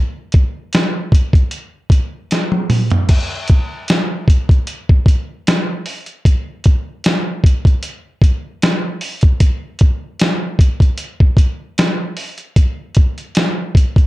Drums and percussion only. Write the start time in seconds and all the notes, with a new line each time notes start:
0.32 kick, closed hi-hat
0.73 snare, closed hi-hat
1.12 kick, closed hi-hat
1.33 kick, closed hi-hat
1.51 closed hi-hat
1.90 kick, closed hi-hat
2.31 snare, closed hi-hat
2.52 high tom
2.70 mid tom, open hi-hat
2.90 closed hi-hat, floor tom
3.09 kick, closed hi-hat, crash
3.48 kick, closed hi-hat
3.88 snare, closed hi-hat
4.28 kick, closed hi-hat
4.49 kick, closed hi-hat
4.67 closed hi-hat
4.89 kick
5.06 kick, closed hi-hat
5.47 snare, closed hi-hat
5.86 open hi-hat
6.06 closed hi-hat
6.25 kick, closed hi-hat
6.64 kick, closed hi-hat
7.04 snare, closed hi-hat
7.44 kick, closed hi-hat
7.65 kick, closed hi-hat
7.83 closed hi-hat
8.22 kick, closed hi-hat
8.62 snare, closed hi-hat
9.01 open hi-hat
9.21 kick, closed hi-hat
9.40 kick, closed hi-hat
9.79 kick, closed hi-hat
10.20 snare, closed hi-hat
10.59 kick, closed hi-hat
10.80 kick, closed hi-hat
10.98 closed hi-hat
11.20 kick
11.37 kick, closed hi-hat
11.78 snare, closed hi-hat
12.17 open hi-hat
12.38 closed hi-hat
12.56 kick, closed hi-hat
12.95 kick, closed hi-hat
13.18 closed hi-hat
13.35 snare, closed hi-hat
13.75 kick, closed hi-hat
13.96 kick, closed hi-hat